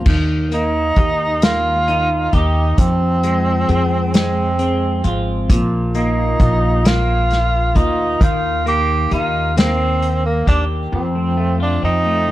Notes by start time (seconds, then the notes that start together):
Already playing: A#2 F3 A#3 F4
0.06 D#2 D#3 A#3, kick, crash
0.51 A#3 D#4, closed hi-hat
0.96 D#2 D#4 G4, kick, closed hi-hat
1.42 A#3 F4, snare, closed hi-hat
1.88 D#4, closed hi-hat
2.33 D#2 A#3 D#4 G4, kick, closed hi-hat
2.78 F2 F3 C4, kick, closed hi-hat
3.23 G#3, closed hi-hat
3.69 F2 C4 G#4, closed hi-hat
4.14 G#3 C4, snare, closed hi-hat
4.59 C4, closed hi-hat
5.04 G#1 G#3 F4, closed hi-hat
5.50 A#1 A#2 F3, kick, closed hi-hat
5.94 A#3 D#4, closed hi-hat
6.40 A#1 F4, kick, closed hi-hat
6.85 A#3 F4, snare, closed hi-hat
7.31 snare, closed hi-hat
7.75 D2 A#3 D#4 F4, kick, closed hi-hat
8.20 D#2 D#3 F4, kick, closed hi-hat
8.66 A#3 G4, closed hi-hat
9.11 D#2 D#4 F4 G4, closed hi-hat
9.56 A#3 C4, snare, closed hi-hat
10.02 closed hi-hat
10.26 A#3
10.47 D#2 A#3 D4 G4, kick, closed hi-hat
10.92 F2 F3 C4
11.15 A3 C4
11.37 A3 F4
11.60 A3 D4 F4
11.82 F2 C4 D#4
12.06 A3
12.28 F3